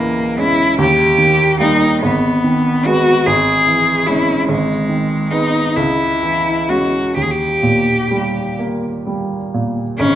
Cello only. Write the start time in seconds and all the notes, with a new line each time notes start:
Already playing: A#3
0.39 E4
0.80 G4
1.60 D#4
2.02 B3
2.86 F#4
3.27 G#4
4.07 E4
4.48 G#3
5.31 D#4
5.76 E4
6.69 F#4
7.16 G4
7.23 G#4
7.31 G4
9.98 C#4